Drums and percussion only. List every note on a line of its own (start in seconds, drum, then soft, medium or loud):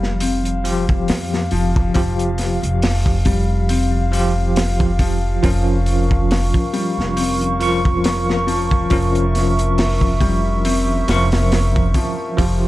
0.03 snare soft
0.20 open hi-hat medium
0.45 closed hi-hat soft
0.65 open hi-hat medium
0.89 kick loud
1.08 snare loud
1.08 open hi-hat medium
1.34 snare medium
1.51 open hi-hat medium
1.76 kick loud
1.94 kick loud
1.94 open hi-hat medium
2.19 closed hi-hat soft
2.38 snare soft
2.38 open hi-hat medium
2.63 closed hi-hat soft
2.82 snare loud
2.82 open hi-hat medium
3.06 kick loud
3.25 kick medium
3.25 open hi-hat medium
3.69 open hi-hat medium
4.13 open hi-hat medium
4.56 snare loud
4.56 open hi-hat medium
4.80 kick loud
4.99 kick medium
4.99 open hi-hat medium
5.44 kick loud
5.44 open hi-hat medium
5.86 open hi-hat medium
6.11 kick medium
6.31 snare loud
6.31 open hi-hat medium
6.54 kick loud
6.74 open hi-hat medium
7.00 snare soft
7.17 open hi-hat medium
7.41 closed hi-hat soft
7.60 open hi-hat medium
7.85 kick loud
8.04 snare loud
8.04 open hi-hat medium
8.29 snare medium
8.48 open hi-hat medium
8.71 kick medium
8.90 kick medium
8.90 open hi-hat medium
9.15 closed hi-hat soft
9.35 snare soft
9.35 open hi-hat medium
9.59 closed hi-hat soft
9.78 snare loud
9.78 open hi-hat medium
10.01 kick medium
10.21 kick loud
10.21 open hi-hat medium
10.65 open hi-hat medium
11.08 snare loud
11.08 open hi-hat medium
11.32 snare loud
11.32 open hi-hat medium
11.52 snare loud
11.52 open hi-hat medium
11.76 kick loud
11.94 kick loud
11.94 open hi-hat medium
12.38 kick loud
12.38 open hi-hat medium
12.38 darbuka tek soft